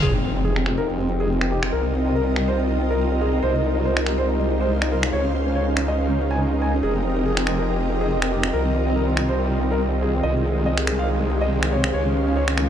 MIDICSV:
0, 0, Header, 1, 7, 480
1, 0, Start_track
1, 0, Key_signature, -4, "minor"
1, 0, Tempo, 425532
1, 25, Time_signature, 4, 2, 24, 8
1, 14315, End_track
2, 0, Start_track
2, 0, Title_t, "Ambient pad"
2, 0, Program_c, 0, 92
2, 24, Note_on_c, 0, 65, 82
2, 380, Note_on_c, 0, 70, 70
2, 535, Note_on_c, 0, 75, 89
2, 3865, Note_on_c, 0, 67, 70
2, 4460, Note_on_c, 0, 72, 90
2, 4470, Note_off_c, 0, 65, 0
2, 4636, Note_off_c, 0, 75, 0
2, 4637, Note_off_c, 0, 70, 0
2, 4736, Note_on_c, 0, 77, 92
2, 5784, Note_on_c, 0, 65, 82
2, 6443, Note_off_c, 0, 67, 0
2, 6557, Note_off_c, 0, 72, 0
2, 6557, Note_off_c, 0, 77, 0
2, 6602, Note_on_c, 0, 70, 75
2, 6655, Note_on_c, 0, 75, 76
2, 11546, Note_on_c, 0, 67, 79
2, 12221, Note_off_c, 0, 70, 0
2, 12316, Note_off_c, 0, 75, 0
2, 12317, Note_off_c, 0, 65, 0
2, 12416, Note_on_c, 0, 77, 85
2, 12417, Note_on_c, 0, 72, 81
2, 13856, Note_off_c, 0, 77, 0
2, 13857, Note_off_c, 0, 67, 0
2, 13857, Note_off_c, 0, 72, 0
2, 14315, End_track
3, 0, Start_track
3, 0, Title_t, "Grand piano"
3, 0, Program_c, 1, 0
3, 25, Note_on_c, 1, 68, 89
3, 115, Note_off_c, 1, 68, 0
3, 154, Note_on_c, 1, 60, 56
3, 231, Note_off_c, 1, 60, 0
3, 265, Note_on_c, 1, 60, 58
3, 355, Note_off_c, 1, 60, 0
3, 394, Note_on_c, 1, 60, 55
3, 471, Note_off_c, 1, 60, 0
3, 504, Note_on_c, 1, 68, 83
3, 595, Note_off_c, 1, 68, 0
3, 634, Note_on_c, 1, 60, 54
3, 711, Note_off_c, 1, 60, 0
3, 745, Note_on_c, 1, 60, 54
3, 835, Note_off_c, 1, 60, 0
3, 874, Note_on_c, 1, 70, 86
3, 951, Note_off_c, 1, 70, 0
3, 986, Note_on_c, 1, 60, 59
3, 1075, Note_off_c, 1, 60, 0
3, 1114, Note_on_c, 1, 60, 57
3, 1191, Note_off_c, 1, 60, 0
3, 1225, Note_on_c, 1, 60, 56
3, 1315, Note_off_c, 1, 60, 0
3, 1354, Note_on_c, 1, 68, 86
3, 1431, Note_off_c, 1, 68, 0
3, 1464, Note_on_c, 1, 60, 54
3, 1555, Note_off_c, 1, 60, 0
3, 1595, Note_on_c, 1, 60, 58
3, 1671, Note_off_c, 1, 60, 0
3, 1705, Note_on_c, 1, 67, 80
3, 1795, Note_off_c, 1, 67, 0
3, 1834, Note_on_c, 1, 60, 58
3, 1911, Note_off_c, 1, 60, 0
3, 1945, Note_on_c, 1, 70, 86
3, 2035, Note_off_c, 1, 70, 0
3, 2073, Note_on_c, 1, 60, 56
3, 2151, Note_off_c, 1, 60, 0
3, 2185, Note_on_c, 1, 60, 56
3, 2275, Note_off_c, 1, 60, 0
3, 2315, Note_on_c, 1, 60, 57
3, 2392, Note_off_c, 1, 60, 0
3, 2425, Note_on_c, 1, 70, 82
3, 2515, Note_off_c, 1, 70, 0
3, 2556, Note_on_c, 1, 60, 55
3, 2632, Note_off_c, 1, 60, 0
3, 2665, Note_on_c, 1, 60, 56
3, 2755, Note_off_c, 1, 60, 0
3, 2795, Note_on_c, 1, 72, 83
3, 2871, Note_off_c, 1, 72, 0
3, 2905, Note_on_c, 1, 60, 58
3, 2995, Note_off_c, 1, 60, 0
3, 3034, Note_on_c, 1, 60, 56
3, 3111, Note_off_c, 1, 60, 0
3, 3145, Note_on_c, 1, 60, 58
3, 3235, Note_off_c, 1, 60, 0
3, 3274, Note_on_c, 1, 70, 87
3, 3351, Note_off_c, 1, 70, 0
3, 3384, Note_on_c, 1, 60, 56
3, 3475, Note_off_c, 1, 60, 0
3, 3514, Note_on_c, 1, 60, 59
3, 3591, Note_off_c, 1, 60, 0
3, 3625, Note_on_c, 1, 68, 80
3, 3715, Note_off_c, 1, 68, 0
3, 3754, Note_on_c, 1, 60, 59
3, 3831, Note_off_c, 1, 60, 0
3, 3864, Note_on_c, 1, 72, 91
3, 3955, Note_off_c, 1, 72, 0
3, 3994, Note_on_c, 1, 63, 57
3, 4071, Note_off_c, 1, 63, 0
3, 4104, Note_on_c, 1, 63, 58
3, 4195, Note_off_c, 1, 63, 0
3, 4234, Note_on_c, 1, 63, 57
3, 4311, Note_off_c, 1, 63, 0
3, 4345, Note_on_c, 1, 72, 82
3, 4435, Note_off_c, 1, 72, 0
3, 4474, Note_on_c, 1, 63, 54
3, 4551, Note_off_c, 1, 63, 0
3, 4585, Note_on_c, 1, 63, 58
3, 4675, Note_off_c, 1, 63, 0
3, 4715, Note_on_c, 1, 72, 84
3, 4791, Note_off_c, 1, 72, 0
3, 4825, Note_on_c, 1, 63, 60
3, 4915, Note_off_c, 1, 63, 0
3, 4955, Note_on_c, 1, 63, 60
3, 5032, Note_off_c, 1, 63, 0
3, 5065, Note_on_c, 1, 63, 60
3, 5155, Note_off_c, 1, 63, 0
3, 5195, Note_on_c, 1, 72, 87
3, 5272, Note_off_c, 1, 72, 0
3, 5306, Note_on_c, 1, 63, 55
3, 5395, Note_off_c, 1, 63, 0
3, 5436, Note_on_c, 1, 63, 58
3, 5512, Note_off_c, 1, 63, 0
3, 5546, Note_on_c, 1, 70, 80
3, 5635, Note_off_c, 1, 70, 0
3, 5676, Note_on_c, 1, 63, 58
3, 5752, Note_off_c, 1, 63, 0
3, 5785, Note_on_c, 1, 73, 93
3, 5875, Note_off_c, 1, 73, 0
3, 5914, Note_on_c, 1, 61, 58
3, 5991, Note_off_c, 1, 61, 0
3, 6025, Note_on_c, 1, 61, 59
3, 6115, Note_off_c, 1, 61, 0
3, 6154, Note_on_c, 1, 61, 58
3, 6231, Note_off_c, 1, 61, 0
3, 6265, Note_on_c, 1, 73, 82
3, 6355, Note_off_c, 1, 73, 0
3, 6394, Note_on_c, 1, 61, 56
3, 6471, Note_off_c, 1, 61, 0
3, 6504, Note_on_c, 1, 61, 54
3, 6595, Note_off_c, 1, 61, 0
3, 6634, Note_on_c, 1, 75, 86
3, 6711, Note_off_c, 1, 75, 0
3, 6744, Note_on_c, 1, 61, 58
3, 6834, Note_off_c, 1, 61, 0
3, 6874, Note_on_c, 1, 61, 59
3, 6951, Note_off_c, 1, 61, 0
3, 6985, Note_on_c, 1, 61, 58
3, 7075, Note_off_c, 1, 61, 0
3, 7114, Note_on_c, 1, 80, 85
3, 7191, Note_off_c, 1, 80, 0
3, 7225, Note_on_c, 1, 61, 53
3, 7315, Note_off_c, 1, 61, 0
3, 7354, Note_on_c, 1, 61, 60
3, 7431, Note_off_c, 1, 61, 0
3, 7465, Note_on_c, 1, 80, 78
3, 7555, Note_off_c, 1, 80, 0
3, 7594, Note_on_c, 1, 61, 57
3, 7671, Note_off_c, 1, 61, 0
3, 7704, Note_on_c, 1, 68, 90
3, 7794, Note_off_c, 1, 68, 0
3, 7834, Note_on_c, 1, 60, 57
3, 7911, Note_off_c, 1, 60, 0
3, 7944, Note_on_c, 1, 60, 58
3, 8035, Note_off_c, 1, 60, 0
3, 8073, Note_on_c, 1, 60, 57
3, 8151, Note_off_c, 1, 60, 0
3, 8185, Note_on_c, 1, 68, 84
3, 8275, Note_off_c, 1, 68, 0
3, 8314, Note_on_c, 1, 60, 56
3, 8391, Note_off_c, 1, 60, 0
3, 8425, Note_on_c, 1, 60, 59
3, 8515, Note_off_c, 1, 60, 0
3, 8554, Note_on_c, 1, 70, 88
3, 8631, Note_off_c, 1, 70, 0
3, 8665, Note_on_c, 1, 60, 57
3, 8755, Note_off_c, 1, 60, 0
3, 8795, Note_on_c, 1, 60, 58
3, 8871, Note_off_c, 1, 60, 0
3, 8904, Note_on_c, 1, 60, 59
3, 8995, Note_off_c, 1, 60, 0
3, 9034, Note_on_c, 1, 68, 86
3, 9111, Note_off_c, 1, 68, 0
3, 9145, Note_on_c, 1, 60, 57
3, 9235, Note_off_c, 1, 60, 0
3, 9274, Note_on_c, 1, 60, 57
3, 9351, Note_off_c, 1, 60, 0
3, 9385, Note_on_c, 1, 67, 78
3, 9475, Note_off_c, 1, 67, 0
3, 9514, Note_on_c, 1, 60, 59
3, 9591, Note_off_c, 1, 60, 0
3, 9623, Note_on_c, 1, 70, 93
3, 9714, Note_off_c, 1, 70, 0
3, 9754, Note_on_c, 1, 60, 59
3, 9831, Note_off_c, 1, 60, 0
3, 9864, Note_on_c, 1, 60, 58
3, 9954, Note_off_c, 1, 60, 0
3, 9994, Note_on_c, 1, 60, 58
3, 10071, Note_off_c, 1, 60, 0
3, 10105, Note_on_c, 1, 70, 81
3, 10195, Note_off_c, 1, 70, 0
3, 10234, Note_on_c, 1, 60, 58
3, 10311, Note_off_c, 1, 60, 0
3, 10345, Note_on_c, 1, 60, 56
3, 10435, Note_off_c, 1, 60, 0
3, 10474, Note_on_c, 1, 72, 87
3, 10551, Note_off_c, 1, 72, 0
3, 10585, Note_on_c, 1, 60, 57
3, 10675, Note_off_c, 1, 60, 0
3, 10714, Note_on_c, 1, 60, 60
3, 10791, Note_off_c, 1, 60, 0
3, 10825, Note_on_c, 1, 60, 61
3, 10915, Note_off_c, 1, 60, 0
3, 10954, Note_on_c, 1, 70, 89
3, 11031, Note_off_c, 1, 70, 0
3, 11064, Note_on_c, 1, 60, 55
3, 11154, Note_off_c, 1, 60, 0
3, 11193, Note_on_c, 1, 60, 60
3, 11271, Note_off_c, 1, 60, 0
3, 11304, Note_on_c, 1, 68, 80
3, 11394, Note_off_c, 1, 68, 0
3, 11433, Note_on_c, 1, 60, 61
3, 11511, Note_off_c, 1, 60, 0
3, 11544, Note_on_c, 1, 75, 93
3, 11634, Note_off_c, 1, 75, 0
3, 11673, Note_on_c, 1, 68, 57
3, 11751, Note_off_c, 1, 68, 0
3, 11785, Note_on_c, 1, 68, 59
3, 11875, Note_off_c, 1, 68, 0
3, 11914, Note_on_c, 1, 68, 55
3, 11991, Note_off_c, 1, 68, 0
3, 12025, Note_on_c, 1, 75, 84
3, 12115, Note_off_c, 1, 75, 0
3, 12154, Note_on_c, 1, 68, 57
3, 12231, Note_off_c, 1, 68, 0
3, 12265, Note_on_c, 1, 68, 58
3, 12355, Note_off_c, 1, 68, 0
3, 12394, Note_on_c, 1, 77, 85
3, 12471, Note_off_c, 1, 77, 0
3, 12505, Note_on_c, 1, 68, 59
3, 12595, Note_off_c, 1, 68, 0
3, 12635, Note_on_c, 1, 68, 58
3, 12711, Note_off_c, 1, 68, 0
3, 12745, Note_on_c, 1, 68, 60
3, 12835, Note_off_c, 1, 68, 0
3, 12874, Note_on_c, 1, 75, 89
3, 12951, Note_off_c, 1, 75, 0
3, 12985, Note_on_c, 1, 68, 58
3, 13075, Note_off_c, 1, 68, 0
3, 13114, Note_on_c, 1, 68, 61
3, 13191, Note_off_c, 1, 68, 0
3, 13225, Note_on_c, 1, 73, 80
3, 13315, Note_off_c, 1, 73, 0
3, 13355, Note_on_c, 1, 68, 60
3, 13431, Note_off_c, 1, 68, 0
3, 13465, Note_on_c, 1, 73, 95
3, 13555, Note_off_c, 1, 73, 0
3, 13594, Note_on_c, 1, 61, 57
3, 13671, Note_off_c, 1, 61, 0
3, 13704, Note_on_c, 1, 61, 60
3, 13794, Note_off_c, 1, 61, 0
3, 13833, Note_on_c, 1, 61, 58
3, 13911, Note_off_c, 1, 61, 0
3, 13944, Note_on_c, 1, 73, 88
3, 14035, Note_off_c, 1, 73, 0
3, 14074, Note_on_c, 1, 61, 57
3, 14151, Note_off_c, 1, 61, 0
3, 14185, Note_on_c, 1, 61, 60
3, 14275, Note_off_c, 1, 61, 0
3, 14315, End_track
4, 0, Start_track
4, 0, Title_t, "Supersaw synth"
4, 0, Program_c, 2, 81
4, 25, Note_on_c, 2, 53, 75
4, 25, Note_on_c, 2, 60, 66
4, 25, Note_on_c, 2, 63, 68
4, 25, Note_on_c, 2, 67, 71
4, 25, Note_on_c, 2, 68, 79
4, 1926, Note_off_c, 2, 53, 0
4, 1926, Note_off_c, 2, 63, 0
4, 1926, Note_off_c, 2, 67, 0
4, 1926, Note_off_c, 2, 68, 0
4, 1945, Note_on_c, 2, 55, 76
4, 1946, Note_on_c, 2, 63, 82
4, 3827, Note_off_c, 2, 60, 0
4, 3846, Note_off_c, 2, 55, 0
4, 3865, Note_on_c, 2, 60, 72
4, 3866, Note_on_c, 2, 56, 76
4, 5747, Note_off_c, 2, 63, 0
4, 5766, Note_off_c, 2, 60, 0
4, 5785, Note_on_c, 2, 61, 67
4, 5785, Note_on_c, 2, 63, 86
4, 7667, Note_off_c, 2, 56, 0
4, 7686, Note_off_c, 2, 61, 0
4, 7703, Note_on_c, 2, 53, 75
4, 7703, Note_on_c, 2, 68, 84
4, 7704, Note_on_c, 2, 60, 70
4, 7704, Note_on_c, 2, 67, 69
4, 9587, Note_off_c, 2, 63, 0
4, 9605, Note_off_c, 2, 53, 0
4, 9605, Note_off_c, 2, 67, 0
4, 9605, Note_off_c, 2, 68, 0
4, 9624, Note_on_c, 2, 51, 75
4, 9624, Note_on_c, 2, 55, 73
4, 11525, Note_off_c, 2, 51, 0
4, 11525, Note_off_c, 2, 55, 0
4, 11545, Note_on_c, 2, 56, 70
4, 11546, Note_on_c, 2, 51, 77
4, 13419, Note_off_c, 2, 60, 0
4, 13446, Note_off_c, 2, 51, 0
4, 13465, Note_on_c, 2, 51, 74
4, 13465, Note_on_c, 2, 61, 83
4, 14315, Note_off_c, 2, 51, 0
4, 14315, Note_off_c, 2, 56, 0
4, 14315, Note_off_c, 2, 61, 0
4, 14315, End_track
5, 0, Start_track
5, 0, Title_t, "Wobble bass"
5, 0, Program_c, 3, 39
5, 26, Note_on_c, 3, 29, 82
5, 1923, Note_off_c, 3, 29, 0
5, 1945, Note_on_c, 3, 36, 82
5, 3843, Note_off_c, 3, 36, 0
5, 3865, Note_on_c, 3, 36, 83
5, 5763, Note_off_c, 3, 36, 0
5, 5785, Note_on_c, 3, 37, 82
5, 7683, Note_off_c, 3, 37, 0
5, 7705, Note_on_c, 3, 29, 87
5, 9603, Note_off_c, 3, 29, 0
5, 9625, Note_on_c, 3, 36, 88
5, 11523, Note_off_c, 3, 36, 0
5, 11545, Note_on_c, 3, 36, 84
5, 13443, Note_off_c, 3, 36, 0
5, 13465, Note_on_c, 3, 37, 85
5, 14315, Note_off_c, 3, 37, 0
5, 14315, End_track
6, 0, Start_track
6, 0, Title_t, "Impact"
6, 0, Program_c, 4, 103
6, 25, Note_on_c, 4, 60, 63
6, 1945, Note_off_c, 4, 60, 0
6, 14315, End_track
7, 0, Start_track
7, 0, Title_t, "Drums"
7, 635, Note_on_c, 9, 26, 50
7, 745, Note_off_c, 9, 26, 0
7, 745, Note_on_c, 9, 26, 47
7, 858, Note_off_c, 9, 26, 0
7, 1594, Note_on_c, 9, 26, 52
7, 1707, Note_off_c, 9, 26, 0
7, 1835, Note_on_c, 9, 26, 66
7, 1947, Note_off_c, 9, 26, 0
7, 2665, Note_on_c, 9, 26, 47
7, 2778, Note_off_c, 9, 26, 0
7, 4474, Note_on_c, 9, 26, 55
7, 4585, Note_off_c, 9, 26, 0
7, 4585, Note_on_c, 9, 26, 48
7, 4698, Note_off_c, 9, 26, 0
7, 5434, Note_on_c, 9, 26, 51
7, 5547, Note_off_c, 9, 26, 0
7, 5675, Note_on_c, 9, 26, 68
7, 5787, Note_off_c, 9, 26, 0
7, 6505, Note_on_c, 9, 26, 49
7, 6618, Note_off_c, 9, 26, 0
7, 8314, Note_on_c, 9, 26, 55
7, 8425, Note_off_c, 9, 26, 0
7, 8425, Note_on_c, 9, 26, 51
7, 8538, Note_off_c, 9, 26, 0
7, 9274, Note_on_c, 9, 26, 55
7, 9387, Note_off_c, 9, 26, 0
7, 9514, Note_on_c, 9, 26, 78
7, 9627, Note_off_c, 9, 26, 0
7, 10345, Note_on_c, 9, 26, 53
7, 10458, Note_off_c, 9, 26, 0
7, 12154, Note_on_c, 9, 26, 57
7, 12265, Note_off_c, 9, 26, 0
7, 12265, Note_on_c, 9, 26, 51
7, 12378, Note_off_c, 9, 26, 0
7, 13115, Note_on_c, 9, 26, 53
7, 13228, Note_off_c, 9, 26, 0
7, 13355, Note_on_c, 9, 26, 78
7, 13467, Note_off_c, 9, 26, 0
7, 14075, Note_on_c, 9, 26, 54
7, 14185, Note_off_c, 9, 26, 0
7, 14185, Note_on_c, 9, 26, 50
7, 14298, Note_off_c, 9, 26, 0
7, 14315, End_track
0, 0, End_of_file